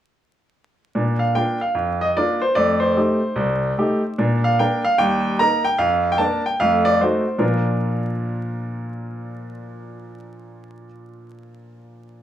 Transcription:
0.95 1.29 A#2 medium
0.95 1.19 D4 soft
1.19 1.34 F5 medium
1.35 1.57 A#3 soft
1.35 1.58 D4 soft
1.35 1.58 F4 soft
1.35 1.61 G5 medium
1.61 2.01 F5 medium
1.75 2.09 F2 soft
2.01 2.16 D#5 medium
2.17 2.39 A#3 soft
2.17 2.39 D4 soft
2.17 2.40 F4 soft
2.17 2.42 D5 medium
2.42 2.56 C5 medium
2.55 2.90 F2 medium
2.55 2.79 A3 soft
2.55 2.82 D5 medium
2.80 4.16 C5 medium
2.96 3.19 A3 soft
2.96 3.19 D#4 soft
2.96 3.19 G4 soft
3.36 3.70 C2 medium
3.78 4.00 A3 soft
3.78 4.00 D#4 soft
3.78 4.00 G4 soft
4.18 4.52 A#2 medium
4.18 4.41 D4 soft
4.44 4.58 F5 medium
4.59 4.81 A#3 soft
4.59 4.81 D4 soft
4.59 4.81 A#4 soft
4.59 4.84 G5 medium
4.85 4.98 F5 medium
4.98 5.32 D#2 medium
4.98 5.22 G3 soft
4.98 5.38 G5 medium
5.39 5.61 A#3 soft
5.39 5.62 D#4 soft
5.39 5.62 A#4 soft
5.39 5.65 A#5 loud
5.65 5.78 G5 medium
5.78 6.13 F2 medium
5.78 6.11 F5 medium
6.12 6.19 G5 medium
6.18 6.40 A#3 soft
6.18 6.41 D4 soft
6.18 6.41 A#4 soft
6.18 6.44 A5 medium
6.46 6.59 G5 medium
6.60 6.94 F2 medium
6.60 6.83 A3 soft
6.60 6.85 F5 medium
6.85 6.99 D5 medium
7.01 7.23 A3 soft
7.01 7.23 D#4 soft
7.01 7.24 F#4 soft
7.01 7.40 C5 soft
7.38 10.84 A#2 medium
7.38 10.85 F3 soft
7.38 10.85 D4 soft
7.38 10.86 F4 soft
7.38 10.85 A#4 medium

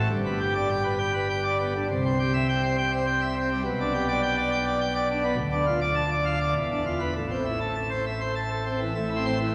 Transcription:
0.10 1.85 G1 medium
0.10 1.85 G2 medium
0.26 0.39 B3 medium
0.40 0.53 G4 medium
0.55 0.68 D5 medium
0.69 0.83 G5 medium
0.84 0.98 B4 medium
0.98 1.12 G5 medium
1.14 1.27 B4 medium
1.30 1.43 G5 medium
1.44 1.57 D5 medium
1.60 1.73 B3 medium
1.75 1.87 D3 medium
1.90 3.61 C2 medium
1.90 3.61 C3 medium
2.05 2.18 C4 medium
2.19 2.32 G4 medium
2.34 2.47 E5 medium
2.49 2.62 G5 medium
2.63 2.76 C5 medium
2.78 2.91 G5 medium
2.92 3.05 C5 medium
3.07 3.20 G5 medium
3.22 3.34 E5 medium
3.36 3.49 C4 medium
3.51 3.63 G3 medium
3.65 5.34 B1 loud
3.65 5.34 B2 loud
3.80 3.93 D4 medium
3.94 4.07 G4 medium
4.08 4.21 D5 loud
4.23 4.35 G5 loud
4.37 4.50 D5 medium
4.52 4.65 G5 medium
4.66 4.79 D5 medium
4.81 4.94 G5 medium
4.95 5.08 D5 medium
5.10 5.23 D4 medium
5.24 5.36 B3 medium
5.37 6.52 D1 loud
5.37 6.52 D2 loud
5.52 5.65 D4 medium
5.66 5.80 F4 medium
5.81 5.95 D5 medium
5.95 6.09 A5 loud
6.11 6.25 D5 medium
6.25 6.39 F5 medium
6.40 6.53 D5 medium
6.55 7.14 E1 medium
6.55 7.14 E2 medium
6.71 6.84 D4 medium
6.86 7.00 F4 medium
7.00 7.13 B4 medium
7.15 8.92 A1 medium
7.15 8.92 A2 medium
7.31 7.44 C4 medium
7.45 7.59 E4 medium
7.61 7.75 A4 medium
7.75 7.89 A5 medium
7.90 8.04 C5 medium
8.06 8.20 E5 medium
8.21 8.34 C5 medium
8.35 8.49 A5 medium
8.50 8.64 A4 medium
8.66 8.79 C4 medium
8.80 8.93 E3 medium
8.95 9.55 A1 medium
8.95 9.55 A2 medium
8.95 9.09 E5 medium
9.10 9.24 E4 medium
9.16 9.33 C4 medium
9.26 9.38 C5 medium
9.26 9.38 C6 medium
9.40 9.53 E3 medium

